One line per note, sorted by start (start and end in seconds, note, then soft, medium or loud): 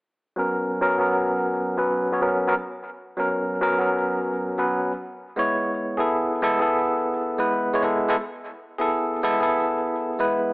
0.36 0.79 F#3 medium
0.36 0.79 B3 medium
0.36 0.80 C#4 medium
0.36 0.80 A#4 medium
0.81 0.97 F#3 medium
0.81 0.97 B3 medium
0.81 0.97 C#4 medium
0.81 0.97 A#4 loud
0.98 1.75 F#3 medium
0.98 1.76 B3 medium
0.98 1.76 C#4 medium
0.98 1.77 A#4 medium
1.77 2.11 F#3 medium
1.77 2.11 B3 medium
1.77 2.11 C#4 medium
1.77 2.11 B4 medium
2.12 2.19 F#3 medium
2.12 2.20 B3 medium
2.12 2.20 C#4 medium
2.12 2.20 C#5 medium
2.21 2.46 F#3 medium
2.21 2.46 B3 medium
2.21 2.46 C#4 medium
2.21 2.46 A#4 medium
2.47 2.53 F#3 medium
2.47 2.54 B3 medium
2.47 2.54 C#4 medium
2.47 2.54 A#4 loud
3.17 3.59 F#3 medium
3.17 3.60 B3 medium
3.17 3.60 C#4 medium
3.17 3.61 A#4 medium
3.61 3.77 F#3 medium
3.61 3.77 B3 medium
3.61 3.78 C#4 medium
3.61 3.78 A#4 loud
3.78 4.56 F#3 medium
3.78 4.56 B3 medium
3.78 4.57 C#4 medium
3.78 4.57 A#4 medium
4.58 4.91 F#3 medium
4.58 4.91 B3 medium
4.58 4.92 C#4 medium
4.58 4.92 B4 medium
5.36 5.96 G#3 medium
5.36 5.96 B3 medium
5.36 5.97 E4 medium
5.36 5.98 C#5 medium
5.97 6.41 B3 medium
5.97 6.41 E4 medium
5.97 6.40 G#4 medium
5.97 6.42 A4 medium
6.42 6.58 G#3 medium
6.42 6.58 B3 medium
6.42 6.59 E4 medium
6.42 6.59 A4 loud
6.59 7.37 B3 medium
6.59 7.37 E4 medium
6.59 7.36 G#4 medium
6.59 7.38 A4 medium
7.38 7.72 G#3 medium
7.38 7.72 B3 medium
7.38 7.72 E4 medium
7.38 7.73 B4 medium
7.74 7.81 G#3 medium
7.74 7.81 B3 medium
7.74 7.81 E4 medium
7.74 7.82 C#5 medium
7.83 8.07 G#3 medium
7.83 8.07 B3 medium
7.83 8.08 E4 medium
7.83 8.08 A4 medium
8.09 8.15 G#3 medium
8.09 8.15 B3 medium
8.09 8.15 E4 medium
8.09 8.16 A4 loud
8.78 9.21 B3 medium
8.78 9.22 E4 medium
8.78 9.21 G#4 medium
8.78 9.22 A4 medium
9.23 9.39 G#3 medium
9.23 9.39 B3 medium
9.23 9.39 E4 medium
9.23 9.39 A4 loud
9.40 10.18 B3 medium
9.40 10.18 E4 medium
9.40 10.17 G#4 medium
9.40 10.19 A4 medium
10.19 10.53 G#3 medium
10.19 10.53 B3 medium
10.19 10.53 E4 medium
10.19 10.53 B4 medium